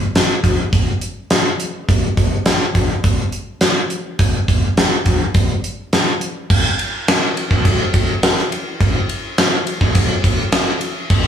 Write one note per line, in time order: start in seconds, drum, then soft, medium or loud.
0.15 snare loud
0.15 closed hi-hat medium
0.44 kick medium
0.44 closed hi-hat medium
0.73 kick loud
0.73 closed hi-hat medium
1.01 closed hi-hat medium
1.30 snare medium
1.30 closed hi-hat medium
1.60 closed hi-hat medium
1.89 kick loud
1.89 closed hi-hat medium
2.17 kick medium
2.17 closed hi-hat medium
2.46 snare loud
2.46 closed hi-hat medium
2.75 kick medium
2.75 closed hi-hat medium
3.04 kick loud
3.04 closed hi-hat medium
3.32 closed hi-hat medium
3.61 snare medium
3.61 closed hi-hat medium
3.90 closed hi-hat medium
4.19 kick loud
4.19 closed hi-hat medium
4.48 kick medium
4.48 closed hi-hat medium
4.77 snare loud
4.77 closed hi-hat medium
5.06 kick medium
5.06 closed hi-hat medium
5.34 kick loud
5.34 closed hi-hat medium
5.64 closed hi-hat medium
5.93 snare loud
5.93 closed hi-hat medium
6.21 closed hi-hat medium
6.50 kick loud
6.50 crash loud
6.79 ride medium
7.08 snare loud
7.08 ride loud
7.37 ride medium
7.51 kick medium
7.65 kick loud
7.65 ride loud
7.94 kick medium
7.94 ride medium
8.23 snare loud
8.23 ride medium
8.38 snare soft
8.52 ride medium
8.81 kick loud
8.81 ride medium
9.09 ride medium
9.38 snare loud
9.38 ride loud
9.67 ride medium
9.81 kick medium
9.95 kick medium
9.95 ride loud
10.24 kick medium
10.24 ride medium
10.52 snare loud
10.52 ride loud
10.81 ride medium
11.10 kick loud
11.10 crash loud